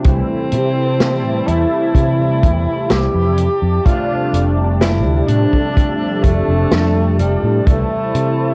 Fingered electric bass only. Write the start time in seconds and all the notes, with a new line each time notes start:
0.05 C2
0.52 C3
1.24 A2
1.48 E2
1.95 C3
2.43 E2
2.67 muted fingered electric bass stroke
2.90 C2
3.14 F2
3.62 F2
4.33 F1
5.05 D2
5.28 A2
6.24 F1
6.48 F1
6.72 F2
7.19 F1
7.43 A2
7.67 C2
8.14 C3